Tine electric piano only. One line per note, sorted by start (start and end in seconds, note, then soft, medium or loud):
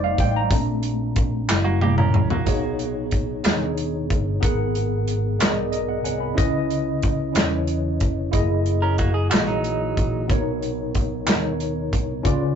0.00 0.46 G3 soft
0.00 0.47 A3 medium
0.00 0.47 D#4 medium
0.00 0.53 C5 medium
0.00 0.52 D5 medium
0.00 0.20 F5 loud
0.20 0.34 G5 loud
0.36 0.66 A#5 medium
0.51 1.45 A3 medium
0.51 1.45 C4 medium
0.51 1.45 D4 medium
1.48 1.92 G3 medium
1.48 1.92 A#3 soft
1.48 1.93 E4 medium
2.46 3.40 B2 medium
2.46 3.31 B3 medium
2.46 3.31 D#4 medium
2.46 3.32 G#4 medium
2.46 3.32 C#5 medium
3.43 4.29 B3 medium
3.43 3.51 D4 soft
3.43 4.30 G#4 medium
3.43 4.30 C#5 medium
3.51 4.32 D#4 medium
4.40 5.36 G#2 medium
4.40 5.26 B3 medium
4.40 5.27 G#4 medium
4.40 5.27 A#4 medium
4.40 5.28 F#5 medium
5.39 6.25 B3 medium
5.39 6.25 G#4 medium
5.39 5.72 A#4 medium
5.39 5.48 D5 medium
5.48 5.71 D#5 medium
5.72 6.04 A#4 medium
5.72 5.88 D#5 medium
5.89 6.03 F#5 medium
6.04 6.21 C#5 soft
6.04 6.20 F#5 medium
6.04 6.35 G#5 medium
6.20 6.52 F#5 soft
6.20 6.52 B5 medium
6.35 7.31 C#3 medium
6.35 7.21 C#4 medium
6.35 7.22 E4 medium
6.35 7.22 B4 medium
6.35 7.23 D#5 loud
7.33 8.19 C#4 medium
7.33 8.20 E4 medium
7.33 8.20 B4 medium
7.33 8.21 C#5 medium
8.31 9.17 A#3 medium
8.31 9.18 E4 medium
8.31 9.18 G#4 medium
8.31 9.19 D#5 medium
9.30 10.16 E3 medium
9.30 10.16 A#3 medium
9.30 10.16 G#4 medium
9.30 10.17 D#5 medium
10.28 11.23 B2 medium
10.28 11.13 B3 medium
10.28 11.14 D#4 medium
10.28 11.14 A#4 medium
10.28 11.15 C#5 medium
11.25 12.11 B3 medium
11.25 12.12 D#4 medium
11.25 12.12 A#4 medium
11.25 12.12 C#5 medium
12.23 12.55 C#3 medium
12.23 12.55 C#4 medium
12.23 12.55 F4 medium
12.23 12.55 B4 medium
12.23 12.55 D5 medium